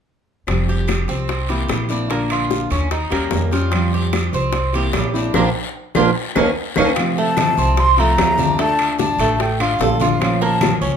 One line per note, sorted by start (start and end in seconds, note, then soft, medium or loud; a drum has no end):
0.47 1.05 F1 medium
0.47 1.28 F3 medium
0.47 1.28 G3 medium
0.47 1.28 C4 medium
0.47 1.29 G4 medium
0.47 high bongo medium
0.47 high timbale medium
0.47 long guiro medium
0.47 claves medium
0.69 1.08 G4 medium
0.69 high bongo soft
0.87 high bongo medium
0.87 high timbale medium
0.87 short guiro medium
0.87 claves medium
1.08 1.66 C2 medium
1.08 1.48 C4 medium
1.08 high bongo soft
1.08 short guiro medium
1.28 muted nylon-string guitar stroke soft
1.28 high bongo medium
1.28 high timbale medium
1.28 long guiro medium
1.49 1.68 E3 soft
1.49 1.69 A#3 medium
1.49 1.69 C4 medium
1.49 1.69 E4 medium
1.49 1.89 G4 medium
1.49 high bongo soft
1.49 high timbale medium
1.69 2.65 A#1 medium
1.69 1.89 E3 soft
1.69 1.89 A#3 soft
1.69 1.89 C4 soft
1.69 1.88 E4 soft
1.69 high bongo medium
1.69 low bongo medium
1.69 high timbale medium
1.69 short guiro medium
1.69 claves medium
1.89 2.09 E3 soft
1.89 2.09 A#3 medium
1.89 2.10 C4 medium
1.89 2.10 D4 medium
1.89 2.09 E4 medium
1.89 short guiro medium
2.09 2.90 D3 medium
2.09 2.91 A#3 medium
2.09 2.30 A#3 medium
2.09 2.91 D4 medium
2.09 2.91 F4 medium
2.09 high bongo medium
2.09 high timbale medium
2.09 long guiro medium
2.30 2.70 F4 medium
2.30 high timbale medium
2.30 claves medium
2.50 high bongo medium
2.50 short guiro medium
2.70 3.09 D#2 medium
2.70 2.91 C#4 medium
2.70 high bongo soft
2.70 high timbale medium
2.70 short guiro medium
2.91 3.11 D#4 medium
2.91 muted nylon-string guitar stroke medium
2.91 high bongo medium
2.91 high timbale medium
2.91 long guiro medium
3.10 3.31 D#2 medium
3.10 3.31 G3 medium
3.10 3.51 A#3 medium
3.10 3.31 C#4 medium
3.10 3.31 G4 medium
3.10 high bongo soft
3.10 high timbale medium
3.10 claves medium
3.31 4.27 F2 medium
3.31 3.51 D#3 soft
3.31 3.51 G3 soft
3.31 3.51 C#4 soft
3.31 3.50 G4 medium
3.31 high bongo medium
3.31 low bongo medium
3.31 low timbale medium
3.31 short guiro medium
3.51 3.72 G3 medium
3.51 3.72 C#4 medium
3.51 3.92 F4 medium
3.51 3.71 G4 medium
3.51 high bongo soft
3.51 high timbale medium
3.51 short guiro medium
3.71 4.52 F3 medium
3.71 4.53 G3 medium
3.71 4.53 C4 medium
3.71 4.54 G4 medium
3.71 high bongo medium
3.71 high timbale medium
3.71 long guiro medium
3.71 claves medium
3.92 4.33 G4 medium
3.92 high bongo soft
4.13 high bongo medium
4.13 high timbale medium
4.13 short guiro medium
4.13 claves medium
4.33 4.90 C2 medium
4.33 4.73 C4 medium
4.33 high bongo soft
4.33 short guiro medium
4.53 muted nylon-string guitar stroke medium
4.53 high bongo medium
4.53 high timbale medium
4.53 long guiro medium
4.73 4.92 E3 medium
4.73 4.93 A#3 medium
4.73 4.93 C4 medium
4.73 4.93 E4 medium
4.73 5.14 G4 medium
4.73 high bongo soft
4.73 high timbale medium
4.93 5.32 A#1 medium
4.93 5.13 E3 soft
4.93 5.14 A#3 soft
4.93 5.13 C4 soft
4.93 5.13 E4 medium
4.93 high bongo medium
4.93 low bongo medium
4.93 high timbale medium
4.93 low timbale medium
4.93 short guiro medium
4.93 claves medium
5.14 5.34 E3 soft
5.14 5.34 A#3 medium
5.14 5.34 C4 medium
5.14 5.35 D4 medium
5.14 5.34 E4 medium
5.14 short guiro medium
5.34 5.50 A#1 medium
5.34 5.48 F3 medium
5.34 5.48 A#3 medium
5.34 5.48 D4 medium
5.34 5.48 F4 medium
5.34 low bongo medium
5.34 high timbale medium
5.34 long guiro medium
5.34 claves medium
5.95 6.10 A#1 medium
5.95 6.08 F3 medium
5.95 6.08 A#3 medium
5.95 6.09 A#3 medium
5.95 6.08 D4 medium
5.95 6.09 D4 medium
5.95 6.09 F4 medium
5.95 low bongo medium
5.95 high timbale medium
5.95 long guiro medium
5.95 claves medium
6.35 6.51 D#2 medium
6.35 6.49 A#3 medium
6.35 6.49 C#4 medium
6.35 6.49 D#4 medium
6.35 low bongo medium
6.35 high timbale medium
6.35 long guiro medium
6.35 claves medium
6.76 6.92 D#2 medium
6.76 6.89 A#3 medium
6.76 6.90 A#3 medium
6.76 6.89 C#4 medium
6.76 6.90 C#4 medium
6.76 6.89 D#4 medium
6.76 6.90 D#4 medium
6.76 7.20 F5 medium
6.76 low bongo medium
6.76 high timbale medium
6.76 long guiro medium
6.76 claves medium
6.96 7.76 C3 medium
6.96 7.77 F3 medium
6.96 7.77 A3 medium
6.96 7.77 C4 medium
6.96 7.77 F4 medium
6.96 high bongo medium
6.96 high conga soft
6.96 high timbale medium
6.96 long guiro medium
6.96 claves medium
7.16 7.57 A3 medium
7.16 7.81 A5 loud
7.16 high bongo soft
7.16 high conga soft
7.37 high bongo medium
7.37 high conga medium
7.37 high timbale medium
7.37 short guiro medium
7.37 claves medium
7.57 8.14 C2 medium
7.57 7.97 C4 medium
7.57 high bongo soft
7.57 high conga soft
7.57 short guiro medium
7.77 8.01 C6 loud
7.77 muted nylon-string guitar stroke medium
7.77 high bongo medium
7.77 high conga soft
7.77 high timbale medium
7.77 long guiro medium
7.97 8.16 F3 medium
7.97 8.17 A3 medium
7.97 8.38 A3 medium
7.97 8.17 C4 medium
7.97 8.17 F4 medium
7.97 8.60 A#5 medium
7.97 high bongo soft
7.97 high conga soft
7.97 high timbale medium
8.17 9.13 D2 medium
8.17 8.37 F3 soft
8.17 8.37 A3 medium
8.17 8.37 C4 medium
8.17 8.36 F4 soft
8.17 high bongo medium
8.17 low bongo medium
8.17 high conga soft
8.17 high timbale medium
8.17 low timbale medium
8.17 short guiro medium
8.17 claves medium
8.37 8.57 F3 medium
8.37 8.57 A3 medium
8.37 8.58 C4 medium
8.37 8.58 D4 medium
8.37 8.57 F4 medium
8.37 high conga medium
8.37 short guiro medium
8.58 9.38 D3 medium
8.58 9.39 A3 medium
8.58 8.98 A3 medium
8.58 9.39 D4 medium
8.58 9.40 F4 medium
8.58 8.98 A5 medium
8.58 high bongo medium
8.58 high timbale medium
8.58 long guiro medium
8.79 high conga soft
8.79 high timbale medium
8.79 claves medium
8.98 9.19 D4 medium
8.98 9.43 A5 medium
8.98 high bongo medium
8.98 high conga medium
8.98 short guiro medium
9.19 9.76 A1 medium
9.19 9.59 A3 medium
9.19 high bongo soft
9.19 high conga soft
9.19 high timbale medium
9.19 short guiro medium
9.39 9.63 G5 medium
9.39 muted nylon-string guitar stroke medium
9.39 high bongo medium
9.39 high conga soft
9.39 high timbale medium
9.39 long guiro medium
9.59 9.79 A3 medium
9.59 9.80 D4 medium
9.59 9.79 F4 medium
9.59 9.80 F4 medium
9.59 10.01 F5 medium
9.59 high bongo soft
9.59 high conga soft
9.59 high timbale medium
9.59 claves medium
9.79 10.76 A#1 medium
9.79 10.00 D3 soft
9.79 10.00 A3 soft
9.79 10.00 D4 medium
9.79 9.99 F4 medium
9.79 10.00 A4 medium
9.79 high bongo medium
9.79 low bongo medium
9.79 high conga soft
9.79 low timbale medium
9.79 short guiro medium
10.00 10.21 A3 medium
10.00 10.20 D4 medium
10.00 10.20 F4 medium
10.00 10.40 F4 medium
10.00 10.43 F5 medium
10.00 high bongo soft
10.00 high conga medium
10.00 high timbale medium
10.00 short guiro medium
10.20 10.97 F3 medium
10.20 10.97 A#3 medium
10.20 10.97 C#4 medium
10.20 10.97 F4 medium
10.20 high bongo medium
10.20 high conga soft
10.20 high timbale medium
10.20 long guiro medium
10.20 claves medium
10.42 10.81 A#3 medium
10.42 10.75 A5 medium
10.42 high bongo soft
10.42 high conga soft
10.61 high bongo medium
10.61 high conga medium
10.61 high timbale medium
10.61 short guiro medium
10.61 claves medium
10.81 10.97 C#2 medium
10.81 10.97 C#4 medium
10.81 high bongo soft
10.81 high conga soft
10.81 short guiro medium